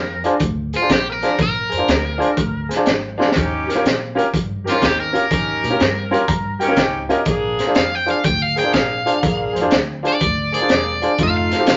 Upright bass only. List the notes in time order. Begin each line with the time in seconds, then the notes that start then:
Already playing: F2
0.40 D2
0.89 A#1
1.39 A#1
1.72 F2
1.88 D2
2.37 D2
2.87 G#1
3.35 D#2
3.85 A#2
4.34 G2
4.82 D#2
5.31 D#2
5.64 A#2
5.80 G2
6.28 G2
6.77 C#2
7.26 A#1
7.77 F2
8.24 D2
8.74 A#1
9.23 A#1
9.56 F2
9.72 D2
10.21 D2
10.70 E1
11.19 F1
11.68 C2